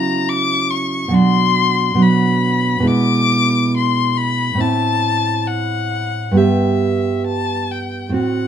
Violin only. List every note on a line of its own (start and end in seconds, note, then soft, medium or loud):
0.00 0.31 A#5 loud
0.29 0.72 D6 loud
0.71 1.15 C#6 loud
1.14 2.03 C6 loud
2.02 2.89 B5 loud
2.87 3.75 D6 loud
3.77 4.19 C6 loud
4.17 4.62 B5 loud
4.60 5.49 A5 loud
5.48 6.39 F#5 loud
6.38 7.26 E5 medium
7.27 7.73 A5 loud
7.71 8.13 G5 medium
8.14 8.47 F#5 loud